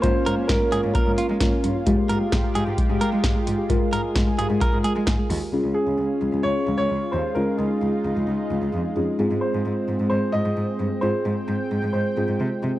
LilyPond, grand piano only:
\new Staff \with { instrumentName = "Grand piano" } { \time 4/4 \key des \lydian \tempo 4 = 131 c''4 bes'4 bes'4 r4 | r1 | r1 | r8 aes'4. des''8. des''8. c''8 |
bes'8 aes'2. r8 | r8 c''4. c''8 ees''4. | c''2 c''4. r8 | }